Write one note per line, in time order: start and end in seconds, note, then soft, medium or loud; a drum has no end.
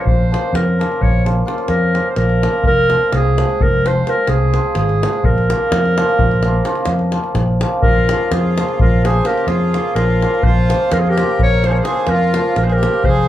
0.00 0.30 F3 medium
0.05 0.34 A#1 medium
0.05 0.56 C5 loud
0.05 davul low medium
0.31 0.78 F3 medium
0.31 0.50 A#3 medium
0.31 0.50 C#4 medium
0.31 0.50 F4 medium
0.31 davul high medium
0.53 0.82 F2 medium
0.53 1.03 A#4 medium
0.53 davul high medium
0.79 1.23 F3 medium
0.79 0.98 A#3 medium
0.79 0.99 C#4 medium
0.79 0.99 F4 medium
0.79 davul high medium
0.92 davul high soft
1.01 1.42 A#1 medium
1.01 1.26 C#5 medium
1.01 davul low medium
1.25 1.44 F3 medium
1.25 1.44 A#3 medium
1.25 1.43 C#4 medium
1.25 1.44 F4 medium
1.25 davul high medium
1.45 1.93 F3 medium
1.45 1.65 A#3 medium
1.45 1.65 C#4 medium
1.45 1.65 F4 medium
1.45 davul high medium
1.58 davul high soft
1.68 1.98 F2 medium
1.68 2.08 A#4 medium
1.68 davul high medium
1.94 2.41 F3 medium
1.94 2.13 A#3 medium
1.94 2.13 C#4 medium
1.94 2.13 F4 medium
1.94 davul high medium
2.10 2.17 C5 medium
2.16 2.46 A#1 loud
2.16 2.64 A#4 medium
2.16 davul high medium
2.29 davul high soft
2.42 2.70 F3 medium
2.42 2.61 A#3 medium
2.42 2.61 C#4 medium
2.42 2.62 F4 medium
2.42 davul high medium
2.53 davul high soft
2.64 2.94 F1 medium
2.64 3.18 A#4 loud
2.64 davul low medium
2.90 3.36 F3 medium
2.90 3.37 G#3 medium
2.90 3.09 C4 medium
2.90 3.10 F4 medium
2.90 davul high medium
3.12 3.42 C2 medium
3.12 3.64 G#4 loud
3.12 davul high medium
3.37 3.84 F3 medium
3.37 3.84 G#3 medium
3.37 3.57 C4 medium
3.37 3.57 F4 medium
3.37 davul high medium
3.49 davul high soft
3.60 4.01 F1 medium
3.60 3.88 A#4 loud
3.60 davul low medium
3.85 4.04 F3 medium
3.85 4.06 G#3 medium
3.85 4.03 C4 medium
3.85 4.03 F4 medium
3.85 4.11 C5 loud
3.85 davul high medium
4.06 4.54 F3 medium
4.06 4.54 G#3 soft
4.06 4.25 C4 medium
4.06 4.25 F4 medium
4.06 4.31 A#4 loud
4.06 davul high medium
4.27 4.57 C2 medium
4.27 4.77 G#4 medium
4.27 davul high medium
4.54 5.01 F3 medium
4.54 5.01 G#3 medium
4.54 4.73 C4 medium
4.54 4.73 F4 medium
4.54 davul high medium
4.75 5.05 G#1 medium
4.75 5.27 G#4 medium
4.75 davul high medium
4.89 davul high soft
5.02 5.29 F3 medium
5.02 5.29 G#3 medium
5.02 5.21 C4 medium
5.02 5.21 F4 medium
5.02 davul high medium
5.13 davul high soft
5.23 5.52 A#1 medium
5.23 7.36 A#4 loud
5.23 davul low medium
5.38 davul high soft
5.50 5.96 F3 medium
5.50 5.69 A#3 medium
5.50 5.69 C#4 medium
5.50 5.69 F4 medium
5.50 davul high medium
5.71 6.00 F2 loud
5.71 davul high medium
5.85 davul high soft
5.97 6.44 F3 medium
5.97 6.16 A#3 medium
5.97 6.16 C#4 medium
5.97 6.17 F4 medium
5.97 davul high medium
6.09 davul high soft
6.19 6.60 A#1 medium
6.19 davul low medium
6.31 davul high soft
6.43 6.63 F3 medium
6.43 6.62 A#3 medium
6.43 6.62 C#4 medium
6.43 6.63 F4 medium
6.43 davul high medium
6.64 7.11 F3 medium
6.64 6.83 A#3 medium
6.64 6.83 C#4 medium
6.64 6.83 F4 medium
6.64 davul high medium
6.75 davul high soft
6.85 7.15 F2 medium
6.85 davul high medium
6.99 davul high soft
7.12 7.61 F3 medium
7.12 7.31 A#3 medium
7.12 7.31 C#4 medium
7.12 7.32 F4 medium
7.12 davul high medium
7.24 davul high soft
7.34 7.63 A#1 medium
7.34 davul high medium
7.34 davul low medium
7.61 7.88 F3 medium
7.61 7.80 A#3 medium
7.61 7.80 C#4 medium
7.61 7.80 F4 medium
7.61 davul high medium
7.83 8.12 A#1 medium
7.83 8.29 F4 medium
7.83 8.35 A#4 loud
7.83 davul low medium
8.09 8.57 F3 medium
8.09 8.28 A#3 medium
8.09 8.29 C#4 soft
8.09 8.29 F4 medium
8.09 davul high medium
8.31 8.60 F2 loud
8.31 8.80 F4 medium
8.31 8.80 G#4 medium
8.31 davul high medium
8.58 9.03 F3 medium
8.58 8.76 A#3 medium
8.58 8.76 C#4 medium
8.58 8.77 F4 medium
8.58 davul high medium
8.69 davul high soft
8.80 9.20 A#1 medium
8.80 9.03 F4 medium
8.80 9.07 A#4 medium
8.80 davul low medium
9.04 9.24 F3 medium
9.04 9.22 A#3 medium
9.04 9.22 C#4 soft
9.04 9.22 F4 medium
9.04 9.25 G#4 medium
9.04 9.28 C5 medium
9.04 davul high medium
9.25 9.73 F3 medium
9.25 9.43 A#3 medium
9.25 9.44 C#4 soft
9.25 9.44 F4 medium
9.25 9.47 G4 medium
9.25 9.49 A#4 medium
9.25 davul high medium
9.38 davul high soft
9.47 9.76 F2 medium
9.47 9.94 F4 medium
9.47 9.97 G#4 medium
9.47 davul high medium
9.74 10.21 F3 medium
9.74 9.91 A#3 medium
9.74 9.91 C#4 medium
9.74 9.92 F4 medium
9.74 davul high medium
9.95 10.24 A#1 medium
9.95 10.44 F4 medium
9.95 10.45 A#4 medium
9.95 davul high medium
10.10 davul high soft
10.22 10.68 F3 medium
10.22 10.40 A#3 medium
10.22 10.41 C#4 medium
10.22 10.41 F4 medium
10.22 davul high medium
10.34 davul high soft
10.43 10.72 A#1 medium
10.43 10.92 F4 medium
10.43 10.94 C5 loud
10.43 davul low medium
10.69 11.17 F3 medium
10.69 10.87 A#3 medium
10.69 10.88 C#4 medium
10.69 10.88 F4 medium
10.69 davul high medium
10.92 11.21 F2 medium
10.92 10.99 F4 medium
10.92 11.01 A#4 medium
10.92 davul high medium
11.00 11.08 F4 medium
11.00 11.11 G#4 medium
11.09 11.41 G4 medium
11.09 11.41 A#4 medium
11.18 11.64 F3 medium
11.18 11.37 A#3 medium
11.18 11.37 C#4 medium
11.18 11.37 F4 medium
11.18 davul high medium
11.29 davul high soft
11.39 11.80 A#1 medium
11.39 11.64 A#4 medium
11.39 11.68 C#5 loud
11.39 davul low medium
11.64 11.84 F3 medium
11.64 11.82 A#3 medium
11.64 11.83 C#4 medium
11.64 11.83 F4 medium
11.64 11.73 C5 medium
11.64 davul high medium
11.68 11.73 G#4 medium
11.68 11.77 A#4 medium
11.68 11.80 C#5 medium
11.79 12.10 G#4 medium
11.79 12.10 C5 medium
11.85 12.34 F3 medium
11.85 12.03 A#3 medium
11.85 12.04 C#4 medium
11.85 12.04 F4 medium
11.85 davul high medium
11.97 davul high soft
12.07 12.36 F2 medium
12.07 12.56 A#4 medium
12.07 davul high medium
12.12 12.58 F4 medium
12.34 12.81 F3 medium
12.34 12.53 A#3 soft
12.34 12.53 C#4 medium
12.34 12.54 F4 medium
12.34 davul high medium
12.56 12.85 A#1 medium
12.56 12.65 A#4 medium
12.56 davul high medium
12.61 12.66 F4 medium
12.61 12.74 C5 medium
12.67 12.73 G#4 medium
12.67 davul high soft
12.72 13.06 G4 medium
12.72 13.06 A#4 loud
12.82 13.09 F3 medium
12.82 13.01 A#3 medium
12.82 13.01 C#4 medium
12.82 13.01 F4 medium
12.82 davul high medium
12.94 davul high soft
13.04 13.28 F1 medium
13.04 13.28 G#4 medium
13.04 13.28 C5 loud
13.04 davul low medium